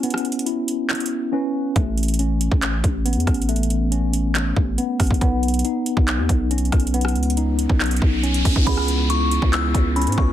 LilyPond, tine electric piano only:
\new Staff \with { instrumentName = "Tine electric piano" } { \time 4/4 \key cis \minor \tempo 4 = 139 <b cis' e'>4 e'2 cis'4 | a4 cis'2 b4 | a4 cis'2 b4 | b4 dis'2 cis'4 |
b4 dis'2 cis'4 | b4 e'2 cis'4 | }